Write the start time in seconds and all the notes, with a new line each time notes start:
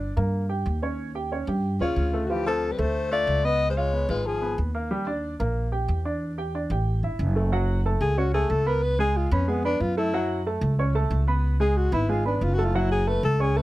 Already playing: G1 D4 D5
0.17 G2 A#3 A#4
0.49 G4 G5
0.66 D#2
0.82 C#4 C#5
1.15 G4 G5
1.32 C#4 C#5
1.47 G2 G4 G5
1.80 D#2 C#3 C#4 F4 C#5
1.96 D2
2.13 A3 A4
2.25 C#3 F#4
2.30 E3 F3 F4 G4
2.46 F3 C4 A4 C5
2.71 G3 B4
2.78 D2 A3 A4 C5
3.11 A3 F4 D5 F5
3.27 C#2
3.44 B3 B4 D#5
3.69 G#3 C5
3.76 G#3 F4 C#5 F5
3.93 B3 B4
4.09 G#1 G#3 F4 B4 F5
4.26 F3 G#4
4.42 B3 B4
4.58 D#2
4.75 A#3 A#4
4.91 G3 G4
5.07 D4 D5
5.40 A#1 A#3 A#4
5.72 G4 G5
5.88 E2
6.05 D4 D5
6.38 G4 G5
6.55 D4 D5
6.70 A1 G4 G5
7.03 G1 E4 E5
7.19 F#1
7.36 A3 A4
7.52 F#3 F#4 F#5
7.86 A3 A4 A5
8.01 C#2 G#4
8.18 C#4 F#4 C#5 C#6
8.34 A3 G#4 A4 A5
8.50 C#2 A4
8.66 B3 A#4 B4 B5
8.83 B4
8.99 G#3 G#4 G#5
9.17 F4
9.31 F2 B3 C#4 B4 B5
9.48 G#3 B3 G#4 G#5
9.64 B3 D4 B4 B5
9.80 F#2 F4
9.97 A3 E4 A4 A5
10.13 F#3 F#4 F#5
10.46 A3 A4 A5
10.61 C#2
10.79 C#4 C#5 C#6
10.95 A3 A4 A5
11.10 C#2
11.27 B3 B4 B5
11.60 G#3 G#4 G#5
11.77 F#4
11.92 G#1 B3 E4 B4 B5
12.09 G#3 F4 G#4 G#5
12.25 B3 D4 B4 B5
12.41 F#1 F4
12.54 F#4
12.58 A3 A4 A5
12.65 F4
12.75 F#3 E4 F#4 F#5
12.91 G#4
13.07 A3 A4 B4 A5
13.23 C#2 A4
13.40 C#4 G#4 C#5 C#6
13.56 A3 A4 B4 A5